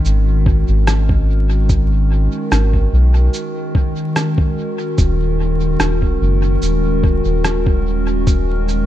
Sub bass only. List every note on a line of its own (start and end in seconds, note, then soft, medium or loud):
0.05 0.64 G#1 medium
0.68 2.28 G#1 loud
2.52 2.88 G#1 loud
2.93 3.29 B1 loud
4.98 5.77 D#1 loud
5.80 6.17 D#1 loud
6.21 6.58 F#1 loud
6.62 7.21 D#1 medium
7.25 8.85 D#1 medium